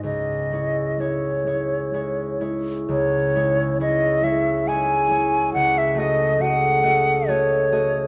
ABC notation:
X:1
M:3/4
L:1/16
Q:1/4=68
K:C#m
V:1 name="Flute"
d4 c6 z2 | c4 d2 e2 g4 | f e d2 f4 c4 |]
V:2 name="Harp"
[C,,G,]2 [G,Ec]2 [G,Ec]2 [G,Ec]2 [G,Ec]2 [G,Ec]2 | C,,2 [G,Ec]2 [G,Ec]2 [G,Ec]2 [G,Ec]2 [G,Ec]2 | C,,2 [A,Fd]2 [A,Fd]2 [A,Fd]2 [A,Fd]2 [A,Fd]2 |]